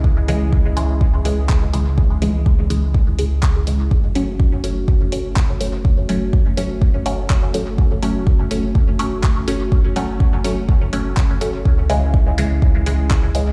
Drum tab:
HH |-o-o-o-o|-o-o-o-o|-o-o-o-o|-o-o-o-o|
CP |------x-|------x-|------x-|------x-|
BD |o-o-o-o-|o-o-o-o-|o-o-o-o-|o-o-o-o-|

HH |-o-o-o-o|-o-o-o-o|-o-o-o-o|
CP |------x-|------x-|------x-|
BD |o-o-o-o-|o-o-o-o-|o-o-o-o-|